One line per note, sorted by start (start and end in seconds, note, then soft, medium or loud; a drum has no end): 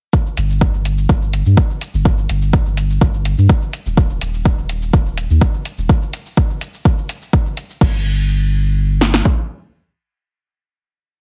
0.13 kick loud
0.13 shaker soft
0.26 shaker soft
0.37 0.71 G1 loud
0.37 closed hi-hat medium
0.37 shaker medium
0.50 shaker soft
0.61 kick loud
0.61 shaker soft
0.74 1.06 G1 medium
0.74 shaker soft
0.85 closed hi-hat medium
0.85 shaker medium
0.98 shaker soft
1.09 1.43 G1 medium
1.09 kick loud
1.09 shaker soft
1.22 shaker soft
1.33 closed hi-hat medium
1.33 shaker medium
1.46 1.55 G2 medium
1.46 shaker soft
1.57 kick loud
1.57 shaker soft
1.70 shaker soft
1.81 closed hi-hat medium
1.81 shaker medium
1.94 2.26 G1 loud
1.94 shaker soft
2.05 kick loud
2.05 shaker soft
2.18 shaker soft
2.29 2.63 G1 loud
2.29 closed hi-hat medium
2.29 shaker medium
2.42 shaker soft
2.53 kick loud
2.53 shaker soft
2.66 2.98 G1 medium
2.66 shaker soft
2.77 closed hi-hat medium
2.77 shaker medium
2.90 shaker soft
3.01 3.35 G1 medium
3.01 kick loud
3.01 shaker soft
3.14 shaker soft
3.25 closed hi-hat medium
3.25 shaker medium
3.38 3.47 G2 medium
3.38 shaker soft
3.49 kick loud
3.49 shaker soft
3.62 shaker soft
3.73 closed hi-hat medium
3.73 shaker medium
3.86 4.18 D#1 loud
3.86 shaker soft
3.97 kick loud
3.97 shaker soft
4.10 shaker soft
4.21 4.55 D#1 loud
4.21 closed hi-hat medium
4.21 shaker medium
4.34 shaker soft
4.45 kick loud
4.45 shaker soft
4.58 4.90 D#1 loud
4.58 shaker soft
4.69 closed hi-hat medium
4.69 shaker medium
4.82 shaker soft
4.93 5.27 D#1 medium
4.93 kick loud
4.93 shaker soft
5.06 shaker soft
5.18 closed hi-hat medium
5.18 shaker medium
5.30 5.39 D#2 medium
5.30 shaker soft
5.41 kick loud
5.41 shaker soft
5.54 shaker soft
5.65 closed hi-hat medium
5.65 shaker medium
5.78 5.87 D#1 medium
5.78 shaker soft
5.89 kick loud
5.89 shaker soft
6.02 shaker soft
6.13 closed hi-hat medium
6.13 shaker medium
6.26 shaker soft
6.37 kick loud
6.37 shaker soft
6.50 shaker soft
6.61 closed hi-hat medium
6.61 shaker medium
6.74 shaker soft
6.85 kick loud
6.85 shaker soft
6.98 shaker soft
7.09 closed hi-hat medium
7.09 shaker medium
7.22 shaker soft
7.33 kick loud
7.33 shaker soft
7.46 shaker soft
7.57 closed hi-hat medium
7.57 shaker medium
7.70 shaker soft
7.81 9.21 G1 loud
7.81 kick loud
7.81 crash medium
9.01 snare medium
9.14 snare medium
9.25 kick medium